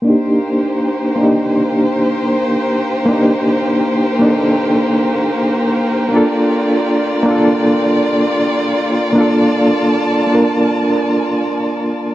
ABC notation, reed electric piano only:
X:1
M:4/4
L:1/8
Q:"Swing 16ths" 1/4=79
K:Cdor
V:1 name="Reed electric piano"
[B,DEG]3 [B,DEG]4- [B,DEG] | [B,DEG]3 [B,DEA]4- [B,DEA] | [B,DFA]3 [B,DFA]4- [B,DFA] | [B,DFA]3 [B,DFB]4- [B,DFB] |]